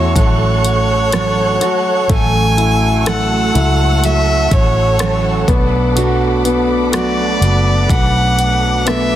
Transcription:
Already playing: E2 F#3 A3 C#4 E4 F#4 A4 C#5 F#5 C#6 E6
0.15 A1 F#3 A3 C#4 F#4 C#5 F#6, kick, closed hi-hat
0.65 closed hi-hat
1.12 A2 E3 F#3 A3 C#4 F#4, cross-stick, closed hi-hat
1.60 F#3 A3 C#4 F#4, cross-stick, closed hi-hat
2.09 A1 A2 E3 F#3 A3 C#4 F#4 G#5 E6, kick, closed hi-hat
2.57 E4, closed hi-hat
3.05 A2 E3 F#3 A3 C#4 F#4 A4 F#5, cross-stick, closed hi-hat
3.54 C#2 F#3 A3 C#4 E4 F#4, closed hi-hat
4.03 F#3 A3 C#4 F#4 E5, closed hi-hat
4.51 A1 C#5, kick, closed hi-hat
4.99 A2 E3 F#3 A3 C#4 F#4, cross-stick, closed hi-hat
5.47 B1 A3 B3 F#4 B5 D6, kick, cross-stick, closed hi-hat
5.96 B2 F#3 A3 D4 F#4, closed hi-hat
6.45 B3, closed hi-hat
6.92 B2 F#3 A3 D4 F#4 D5, cross-stick, closed hi-hat
7.41 F#1 A3 D4 F#4, closed hi-hat
7.89 B1 F#3 A3 D4 F#4 F#5, kick, closed hi-hat
8.39 closed hi-hat
8.86 B2 F#3 A3 B3 D4 F#4 E5, cross-stick, closed hi-hat

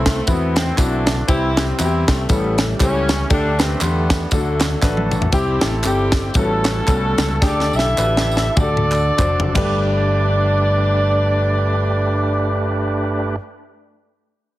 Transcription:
Already playing: C2 A3 C4 E4 A4
0.04 A3, kick, snare, ride, tambourine
0.26 E2 E3 B3 C4 E4 F#4, kick, ride, tambourine
0.55 C4, snare, ride, tambourine
0.77 B1 D3 A3 C4 D4 E4 F#4, kick, clap, ride, tambourine
1.07 snare, ride, tambourine
1.28 C2 C3 E3 G3 C4 E4 G4, kick, ride, tambourine
1.56 C4 E4 G4, snare, ride, tambourine
1.78 E2 E3 C4 E4 F#4, clap, ride, tambourine
1.85 G4
2.07 C2 A3, kick, snare, ride, tambourine
2.29 A1 A2 E3 G3 A3 B3 C#4 E4 G4 A4, kick, ride, tambourine
2.36 C#4
2.58 snare, ride, tambourine
2.79 C#2 C#3 E3 G3 A3 C#4 E4 G4, kick, clap, ride, tambourine
3.09 snare, ride, tambourine
3.30 D2 D3 G3 A3 D4 F#4 G4 A4, kick, ride, tambourine
3.37 G4
3.59 C3 C4 D4 G4 B4, snare, ride, tambourine
3.80 E2 D3 G3 B3 D4 G4 C6, clap, ride, tambourine
4.10 kick, snare, ride, tambourine
4.31 D2 D3 F#3 A3 D4 F4 F#4 A4, kick, ride, tambourine
4.38 F#4
4.60 snare, clap, ride, tambourine
4.82 A1 A3 D4 F#4 A4 B4, kick, snare, clap, tambourine
4.97 high tom
5.11 mid tom, tambourine
5.22 floor tom
5.32 C2 C3 G3 C4 E4 G4, kick, ride, tambourine
5.61 A1 A3 A4, snare, ride, tambourine
5.83 G1 G3 C4 E4 G4 A4, clap, ride, tambourine
6.12 kick, snare, ride, tambourine
6.34 A1 A2 G3 A3 B3 C#4 E4 F#4 G#4 A4, kick, ride, tambourine
6.42 A4
6.64 snare, clap, ride, tambourine
6.88 C2 G3 B3 C#4 F#4 A4, kick, clap, ride, tambourine
7.18 C#2, snare, ride, tambourine
7.42 D2 D3 D4 G4 G#4 A4 D5, kick, snare, tambourine
7.49 A4
7.60 snare
7.73 B1 E4 G4 A4 E5, tambourine
7.79 snare
7.97 A1 D4 F#4 B4, clap, tambourine
8.04 G4
8.17 snare
8.31 tambourine
8.37 snare
8.56 D2 D3 D4 F#4 G4 A4 D5, kick, mid tom, tambourine
8.63 A4
8.77 mid tom
8.92 clap, tambourine
9.18 F1 D4 F#4 C5, kick, clap, floor tom, tambourine
9.40 floor tom
9.53 G1 G2 A3 D4 G4 B4 D5, kick, clap, crash

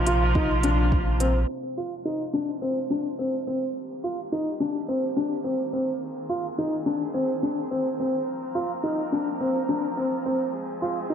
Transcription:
Already playing: A#1 C3 F3 A#3 F4
0.07 F4, closed hi-hat
0.35 D#4, kick
0.63 D4, closed hi-hat
0.92 kick
1.20 C4, closed hi-hat
1.49 C3 F3 G#3 F4
1.77 F4
2.05 D#4
2.33 D4
2.62 C4
2.90 D4
3.19 C4
3.47 C4
3.76 D#3 G3 A#3 G4
4.04 F4
4.32 D#4
4.60 D4
4.88 C4
5.17 D4
5.44 C4
5.73 C4
6.02 C4 G#4
6.29 F4
6.58 D#4
6.86 D4
7.14 C4
7.43 D4
7.71 C4
8.00 C4
8.26 F3 A#3 A#4
8.55 F4
8.83 D#4
9.12 D4
9.40 C4
9.69 D4
9.97 C4
10.26 C4
10.53 G#3 C4 G#4
10.82 F4
11.10 D#4

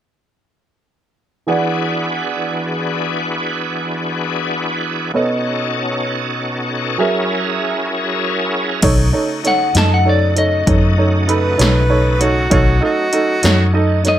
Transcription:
1.47 E3 B3 D4 F#4 G#4 D5 F#5
5.14 B2 B3 C#4 D#4 F#4 A4 C#5 D#5
6.98 F#3 C#4 E4 G#4 A#4 E5
8.82 B1 C#3 A3 D#4 F#4 A4 C#5, kick, closed hi-hat, crash
9.13 D#4 A4 C#5
9.44 D#4 A4 C#5 F#5, snare, closed hi-hat
9.74 F#2 D#4 A4 D#5 A5, snare, closed hi-hat
9.94 F#5
10.05 D#4 A4 C#5
10.09 D5
10.36 D#4 A4 C#5 D#5, closed hi-hat
10.66 F#2 D#4 A4 C#5, kick, closed hi-hat
10.98 D#4 A4 C#5
11.28 D#4 A4 B4, closed hi-hat
11.58 B1 D#4 A4 C#5, snare, closed hi-hat
11.89 D#4 A4 C#5
12.20 D#4 F#4 A4 C#5, closed hi-hat
12.50 B1 F#3 A3 C#4 D#4 F#4 A4 C#5, kick, closed hi-hat
12.80 D#4 F#4 A4 D#5
13.13 D#4 A4 D#5, closed hi-hat
13.43 F#2 D#4 A4 C#5, snare, closed hi-hat
13.73 D#4 A4 D#5
14.04 D#4 A4 C#5, snare, closed hi-hat
14.08 D#5

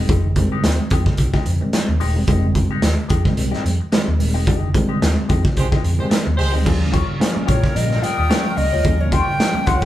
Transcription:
Already playing: D#3 G3 G#3 C4
0.09 F1 G#3 D#4 G4, kick, closed hi-hat
0.36 D#3 G3 G#3 C4, muted clean electric guitar stroke, kick, closed hi-hat
0.52 G#3 D#4 G4
0.64 D#2, muted clean electric guitar stroke, snare, closed hi-hat
0.90 F2 G#3 D#4 G4, kick, closed hi-hat
1.06 muted clean electric guitar stroke, kick, snare
1.17 C2, muted clean electric guitar stroke, kick, closed hi-hat
1.33 G#3 D#4 G4, kick, snare
1.46 F2, muted clean electric guitar stroke, closed hi-hat
1.61 D#3 G3 G#3 C4, muted clean electric guitar stroke
1.73 muted clean electric guitar stroke, snare, closed hi-hat
1.89 D#2, muted clean electric guitar stroke
2.00 D#1 G#3 D#4 G4, open hi-hat
2.15 E1 D#3 G3 G#3 C4, muted clean electric guitar stroke
2.27 F1 D#3 G3 G#3 C4 D#4 G4, kick, closed hi-hat
2.55 muted clean electric guitar stroke, kick, closed hi-hat
2.71 G#3 D#4 G4
2.82 D#2, muted clean electric guitar stroke, snare, closed hi-hat
3.09 F2 G#3 D#4 G4, kick, closed hi-hat
3.25 D#3 G3 G#3 C4, muted clean electric guitar stroke, kick, snare
3.36 C2 D#3 G3 G#3 C4, muted clean electric guitar stroke, closed hi-hat
3.51 G#3 D#4 G4, snare
3.65 F2, muted clean electric guitar stroke, closed hi-hat
3.80 muted clean electric guitar stroke
3.92 D#3 G3 G#3 C4, muted clean electric guitar stroke, snare, closed hi-hat
4.07 D#2, muted clean electric guitar stroke
4.19 D#1 D#3 G3 G#3 C4, open hi-hat
4.34 E1 G#3 D#4 G4
4.47 F1 G#3 D#4 G4, kick, closed hi-hat
4.74 D#3 G3 G#3 C4, muted clean electric guitar stroke, kick, closed hi-hat
4.89 G#3 D#4 G4
5.01 D#2, muted clean electric guitar stroke, snare, closed hi-hat
5.29 F2 G#3 D#4 G4, kick, closed hi-hat
5.44 muted clean electric guitar stroke, kick, snare
5.56 C2 G#3 G4 C5, muted clean electric guitar stroke, kick, closed hi-hat
5.72 G#3 D#4 G4, kick, snare
5.84 F2, muted clean electric guitar stroke, closed hi-hat
5.99 D#3 G3 G#3 C4 G4 C5, muted clean electric guitar stroke
6.10 muted clean electric guitar stroke, snare, closed hi-hat
6.26 D#2, muted clean electric guitar stroke
6.37 C#2 G#3 G4 C5, open hi-hat
6.52 D2 D#3 G3 G#3 C4 D#4 G4
6.65 D#2 F3 G3 A#3 C#4 F4 A#4, kick, crash
6.92 F4 G4 C#5, kick, closed hi-hat
7.20 F3 G3 A#3 C#4, snare, closed hi-hat
7.35 muted clean electric guitar stroke, muted fingered electric bass stroke
7.46 A#1 F4 G4 C#5, kick, closed hi-hat
7.63 muted clean electric guitar stroke, kick, snare
7.74 A#1 F3 G3 A#3 C#4 D#5, muted clean electric guitar stroke, closed hi-hat
7.90 muted clean electric guitar stroke, snare
8.02 F4 G4 D#5 G5, closed hi-hat
8.17 D#2 F4 G4 D#5
8.29 F3 G3 A#3 C#4 F4 G4 C#5, snare, closed hi-hat
8.57 C#2 D#5, muted clean electric guitar stroke, open hi-hat
8.73 D2 F4 G4 C#5
8.84 D#2 F3 G3 A#3 C#4, kick, closed hi-hat
9.01 C#5
9.12 F4 G4 C#5 G5, kick, closed hi-hat
9.39 F3 G3 A#3 C#4, snare, closed hi-hat
9.54 muted fingered electric bass stroke, muted clean electric guitar stroke
9.66 C#2 F4 G4 C#5 F#5, kick, closed hi-hat
9.82 G5

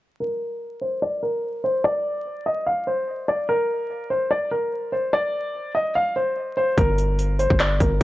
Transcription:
0.20 A#4
0.81 C5
1.02 D5
1.23 A#4
1.64 C5
1.84 D5
2.46 D#5
2.66 F5
2.87 C5
3.28 D5
3.49 A#4
4.10 C5
4.31 D5
4.51 A#4
4.92 C5
5.13 D5
5.75 D#5
5.95 F5
6.16 C5
6.57 C5
6.78 G1 A#4, kick, closed hi-hat
6.98 closed hi-hat
7.19 closed hi-hat
7.39 C5, closed hi-hat
7.50 G1, kick
7.60 D5, clap, closed hi-hat
7.80 G1 A#4, kick, closed hi-hat

